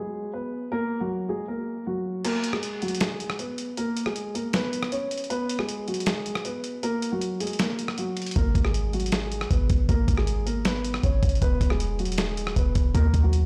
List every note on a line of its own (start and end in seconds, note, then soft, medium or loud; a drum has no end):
0.00 0.32 G#3 medium
0.00 0.31 G#4 medium
0.34 0.70 B3 medium
0.34 0.69 B4 medium
0.72 0.99 A#3 medium
0.72 0.99 A#4 loud
1.00 1.28 F#3 medium
1.00 1.27 F#4 medium
1.29 1.45 G#3 medium
1.29 1.45 G#4 medium
1.48 1.85 A#3 medium
1.48 1.84 A#4 medium
1.86 2.23 F#3 medium
1.86 2.22 F#4 medium
2.25 2.52 A#3 medium
2.25 2.51 A#4 loud
2.25 closed hi-hat medium
2.25 crash loud
2.44 closed hi-hat medium
2.53 2.81 G#3 medium
2.53 2.80 G#4 medium
2.53 cross-stick medium
2.63 closed hi-hat medium
2.82 2.98 F#3 medium
2.82 2.98 F#4 medium
2.82 closed hi-hat soft
2.88 closed hi-hat medium
2.95 closed hi-hat medium
3.00 3.37 G#3 medium
3.00 3.37 G#4 medium
3.00 snare loud
3.00 closed hi-hat medium
3.20 closed hi-hat medium
3.30 cross-stick loud
3.39 3.76 B3 medium
3.39 3.75 B4 medium
3.39 closed hi-hat medium
3.58 closed hi-hat medium
3.77 4.05 A#3 medium
3.77 4.04 A#4 loud
3.77 closed hi-hat medium
3.97 closed hi-hat medium
4.06 4.33 G#3 medium
4.06 4.33 G#4 medium
4.06 cross-stick medium
4.16 closed hi-hat medium
4.35 4.51 A#3 medium
4.35 4.50 A#4 medium
4.35 closed hi-hat medium
4.53 4.90 B3 medium
4.53 4.90 B4 loud
4.53 snare loud
4.53 closed hi-hat medium
4.73 closed hi-hat medium
4.83 cross-stick loud
4.92 5.28 C#4 medium
4.92 5.28 C#5 medium
4.92 closed hi-hat medium
5.11 closed hi-hat medium
5.18 closed hi-hat medium
5.24 closed hi-hat soft
5.30 5.58 B3 medium
5.30 5.57 B4 loud
5.30 closed hi-hat medium
5.49 closed hi-hat medium
5.59 5.86 G#3 medium
5.59 5.86 G#4 medium
5.59 cross-stick medium
5.69 closed hi-hat medium
5.88 6.04 F#3 medium
5.88 6.03 F#4 medium
5.88 closed hi-hat soft
5.94 closed hi-hat medium
6.00 closed hi-hat medium
6.06 6.43 G#3 medium
6.06 6.43 G#4 medium
6.06 snare loud
6.06 closed hi-hat medium
6.26 closed hi-hat medium
6.35 cross-stick loud
6.45 6.81 B3 medium
6.45 6.81 B4 medium
6.45 closed hi-hat medium
6.64 closed hi-hat medium
6.83 7.11 A#3 medium
6.83 7.10 A#4 loud
6.83 closed hi-hat medium
7.02 closed hi-hat medium
7.12 7.39 F#3 medium
7.12 7.39 F#4 medium
7.21 closed hi-hat medium
7.40 7.57 G#3 medium
7.40 7.56 G#4 medium
7.40 closed hi-hat medium
7.47 closed hi-hat medium
7.53 closed hi-hat soft
7.59 7.96 A#3 medium
7.59 7.96 A#4 medium
7.59 snare loud
7.59 closed hi-hat medium
7.79 closed hi-hat medium
7.88 cross-stick loud
7.98 8.34 F#3 medium
7.98 8.34 F#4 medium
7.98 closed hi-hat medium
8.17 closed hi-hat soft
8.17 open hi-hat medium
8.22 closed hi-hat medium
8.26 closed hi-hat medium
8.31 closed hi-hat medium
8.36 8.54 G#1 loud
8.36 8.63 A#3 medium
8.36 8.63 A#4 loud
8.36 kick loud
8.36 closed hi-hat medium
8.55 9.47 G#1 loud
8.55 kick medium
8.55 closed hi-hat medium
8.65 8.92 G#3 medium
8.65 8.92 G#4 medium
8.65 cross-stick medium
8.74 closed hi-hat medium
8.93 9.10 F#3 medium
8.93 9.09 F#4 medium
8.93 closed hi-hat soft
9.00 closed hi-hat medium
9.06 closed hi-hat medium
9.12 9.49 G#3 medium
9.12 9.48 G#4 medium
9.12 snare loud
9.12 closed hi-hat medium
9.32 closed hi-hat medium
9.41 cross-stick loud
9.51 9.69 G#1 loud
9.51 9.87 B3 medium
9.51 9.87 B4 medium
9.51 kick medium
9.51 closed hi-hat medium
9.70 9.88 G#1 loud
9.70 kick loud
9.70 closed hi-hat medium
9.89 10.07 G#1 loud
9.89 10.16 A#3 medium
9.89 10.16 A#4 medium
9.89 kick loud
9.89 closed hi-hat medium
10.08 11.00 G#1 loud
10.08 kick medium
10.08 closed hi-hat medium
10.17 10.45 G#3 medium
10.17 10.45 G#4 medium
10.17 cross-stick medium
10.27 closed hi-hat medium
10.46 10.62 A#3 medium
10.46 10.62 A#4 medium
10.46 closed hi-hat medium
10.65 11.02 B3 medium
10.65 11.01 B4 loud
10.65 snare loud
10.65 closed hi-hat medium
10.85 closed hi-hat medium
10.94 cross-stick loud
11.03 11.22 G#1 loud
11.03 11.40 C#4 medium
11.03 11.39 C#5 medium
11.03 kick medium
11.03 closed hi-hat medium
11.23 11.41 G#1 loud
11.23 kick loud
11.23 closed hi-hat medium
11.29 closed hi-hat medium
11.35 closed hi-hat soft
11.42 11.60 E1 loud
11.42 11.69 B3 medium
11.42 11.69 B4 loud
11.42 kick loud
11.42 closed hi-hat medium
11.61 12.10 E1 loud
11.61 kick medium
11.61 closed hi-hat medium
11.70 11.98 G#3 medium
11.70 11.97 G#4 medium
11.70 cross-stick medium
11.80 closed hi-hat medium
11.99 12.15 F#3 medium
11.99 12.15 F#4 medium
11.99 closed hi-hat soft
12.05 12.54 D#1 loud
12.05 closed hi-hat medium
12.12 closed hi-hat medium
12.18 12.55 G#3 medium
12.18 12.54 G#4 medium
12.18 snare loud
12.18 closed hi-hat medium
12.37 closed hi-hat medium
12.47 cross-stick loud
12.56 12.75 E1 loud
12.56 12.93 B3 medium
12.56 12.92 B4 medium
12.56 kick medium
12.56 closed hi-hat medium
12.75 12.94 E1 loud
12.75 kick loud
12.75 closed hi-hat medium
12.95 13.13 D#2 loud
12.95 13.22 A#3 medium
12.95 13.22 A#4 loud
12.95 kick loud
12.95 closed hi-hat medium
13.14 13.46 D#2 loud
13.14 kick medium
13.14 closed hi-hat medium
13.23 13.46 F#3 medium
13.23 13.46 F#4 medium
13.33 closed hi-hat medium